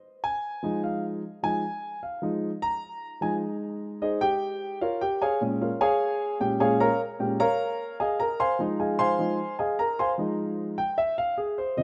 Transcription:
0.24 0.79 G#5 medium
0.63 1.20 F3 medium
0.63 1.20 G#3 soft
0.63 1.20 D#4 medium
0.84 1.03 F5 medium
1.43 1.61 F3 soft
1.43 1.61 G#3 soft
1.43 1.61 D#4 medium
1.43 1.99 G#5 loud
2.03 2.22 F5 medium
2.22 2.49 F3 medium
2.22 2.49 G#3 soft
2.22 2.49 D#4 medium
2.62 3.18 A#5 loud
3.21 3.40 F3 medium
3.21 4.77 G#3 medium
3.21 4.01 D#4 medium
3.21 3.34 G#5 medium
4.02 4.21 D#4 medium
4.02 4.21 G#4 medium
4.02 4.21 C5 medium
4.02 4.21 D#5 medium
4.21 4.77 G4 medium
4.21 4.77 G5 loud
4.81 5.01 F4 medium
4.81 5.01 A#4 medium
4.81 5.01 C#5 medium
4.81 5.01 F5 medium
5.01 5.21 G4 medium
5.01 5.21 G5 medium
5.22 5.41 G#4 medium
5.22 5.41 C#5 medium
5.22 5.41 F5 medium
5.22 5.41 G#5 medium
5.41 5.67 A#2 medium
5.41 5.68 G#3 medium
5.41 5.68 C#4 medium
5.62 5.81 F4 soft
5.62 5.81 A#4 soft
5.62 5.80 C#5 soft
5.62 5.80 F5 medium
5.81 6.37 G#4 medium
5.81 6.37 C#5 medium
5.81 6.37 F5 medium
5.81 6.36 G#5 loud
6.40 6.58 A#2 soft
6.40 6.58 G#3 soft
6.40 6.58 C#4 medium
6.40 6.60 G4 medium
6.40 6.60 G5 medium
6.60 6.86 A#2 medium
6.60 6.87 G#3 medium
6.60 6.87 C#4 medium
6.60 6.80 G#4 medium
6.60 6.79 C#5 medium
6.60 6.79 F5 medium
6.60 6.80 G#5 medium
6.80 7.00 A#4 medium
6.80 7.00 C#5 medium
6.80 7.00 F5 medium
6.80 6.99 A#5 medium
7.19 7.37 A#2 medium
7.19 7.38 G#3 soft
7.19 7.38 C#4 medium
7.19 7.40 G4 medium
7.19 7.39 G5 medium
7.40 7.96 A#4 medium
7.40 7.96 C#5 medium
7.40 7.96 F5 medium
7.40 7.95 A#5 loud
8.00 8.19 G#4 medium
8.00 8.19 D#5 medium
8.00 8.19 F5 medium
8.00 8.19 G#5 medium
8.20 8.39 A#4 medium
8.20 8.39 A#5 medium
8.40 8.59 C5 medium
8.40 8.59 F5 medium
8.40 8.59 G#5 medium
8.40 8.59 C6 loud
8.59 9.16 F3 medium
8.59 9.16 G#3 medium
8.59 9.16 D#4 medium
8.80 8.99 G#4 medium
8.80 8.99 D#5 medium
8.80 8.98 F5 medium
8.80 8.98 G#5 medium
8.99 9.55 C5 medium
8.99 9.55 F5 medium
8.99 9.55 G#5 medium
8.99 9.55 C6 loud
9.19 9.37 F3 soft
9.19 9.37 G#3 soft
9.19 9.37 D#4 medium
9.59 9.78 G#4 medium
9.59 9.78 D#5 medium
9.59 9.78 F5 medium
9.59 9.78 G#5 medium
9.79 9.98 A#4 medium
9.79 9.98 A#5 medium
9.99 10.11 C5 medium
9.99 10.12 F5 medium
9.99 10.11 G#5 medium
9.99 10.11 C6 medium
10.18 10.75 F3 medium
10.18 10.75 G#3 medium
10.18 10.75 D#4 medium
10.78 10.97 G5 medium
10.98 11.17 E5 medium
11.18 11.37 F5 medium
11.38 11.57 G#4 medium
11.58 11.77 C5 medium
11.77 11.83 C#3 medium
11.77 11.83 F3 medium
11.77 11.83 C4 medium
11.77 11.83 D#5 medium

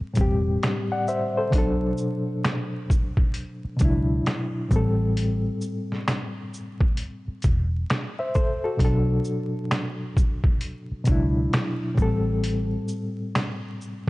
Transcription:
0.01 muted fingered electric bass stroke soft
0.14 0.86 A2 medium
0.14 0.87 G3 medium
0.14 kick medium
0.14 closed hi-hat soft
0.14 shaker soft
0.18 0.56 E1 medium
0.18 0.88 C4 medium
0.18 0.89 G4 medium
0.63 finger snap medium
0.63 snare loud
0.63 closed hi-hat medium
0.92 1.07 D5 medium
0.92 1.07 F#5 medium
1.07 1.35 C5 medium
1.07 1.35 E5 medium
1.07 shaker soft
1.37 1.57 A4 medium
1.37 1.80 C5 medium
1.51 1.91 B1 loud
1.51 2.84 B2 medium
1.51 2.85 F#3 medium
1.51 kick loud
1.51 closed hi-hat loud
1.55 2.86 D4 medium
1.55 2.88 A4 medium
1.97 shaker medium
2.44 finger snap medium
2.44 snare medium
2.44 closed hi-hat medium
2.90 kick medium
2.90 shaker soft
3.17 kick medium
3.34 closed hi-hat medium
3.65 muted fingered electric bass stroke soft
3.77 4.49 B2 medium
3.77 4.51 F#3 medium
3.77 closed hi-hat soft
3.77 shaker soft
3.81 4.19 C#2 medium
3.81 4.52 D4 medium
3.81 4.53 E4 medium
3.81 kick medium
4.26 finger snap medium
4.26 snare loud
4.26 closed hi-hat medium
4.69 5.48 A1 loud
4.69 6.18 A2 medium
4.69 6.19 G3 medium
4.69 kick medium
4.69 shaker soft
4.74 6.20 C4 medium
4.74 6.21 A4 medium
5.17 closed hi-hat loud
5.61 shaker soft
5.92 snare soft
6.08 finger snap medium
6.08 snare medium
6.08 closed hi-hat medium
6.54 shaker soft
6.80 kick loud
6.97 closed hi-hat medium
7.28 muted fingered electric bass stroke soft
7.42 7.83 E1 medium
7.42 kick medium
7.42 closed hi-hat soft
7.42 shaker soft
7.90 finger snap medium
7.90 snare loud
7.90 closed hi-hat medium
8.19 8.34 C5 medium
8.19 8.34 E5 medium
8.34 8.63 A4 medium
8.34 8.62 C5 medium
8.34 kick loud
8.34 shaker soft
8.64 9.07 F#4 medium
8.64 8.83 A4 medium
8.77 9.18 B1 medium
8.77 10.11 B2 medium
8.77 10.12 F#3 medium
8.77 kick loud
8.77 closed hi-hat loud
8.82 10.13 D4 medium
8.82 10.14 A4 medium
9.24 shaker soft
9.71 finger snap medium
9.71 snare medium
9.71 closed hi-hat medium
10.17 kick medium
10.17 shaker soft
10.44 kick medium
10.61 closed hi-hat medium
10.91 muted fingered electric bass stroke soft
11.04 11.46 C#2 medium
11.04 11.76 B2 medium
11.04 11.78 F#3 medium
11.04 kick medium
11.04 closed hi-hat soft
11.04 shaker soft
11.09 11.79 D4 medium
11.09 11.80 E4 medium
11.53 finger snap medium
11.53 snare loud
11.53 closed hi-hat medium
11.95 12.75 A1 loud
11.95 13.44 A2 medium
11.95 13.45 G3 medium
11.95 kick loud
11.95 shaker soft
11.99 13.47 C4 medium
11.99 13.48 A4 loud
12.44 closed hi-hat loud
12.88 shaker soft
13.35 finger snap medium
13.35 snare medium
13.35 closed hi-hat medium
13.81 shaker soft

